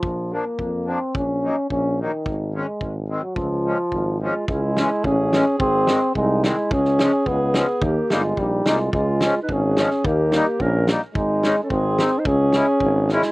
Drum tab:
SD |--------|--------|--------|--------|
BD |o---o---|o---o---|o---o---|o---o---|

SD |--o---o-|--o---o-|-oo---o-|--o---o-|
BD |o---o---|o---o---|o---o---|o---o---|

SD |--o---oo|--o---o-|--o---o-|--o---oo|
BD |o---o---|o---o---|o---o---|o---o---|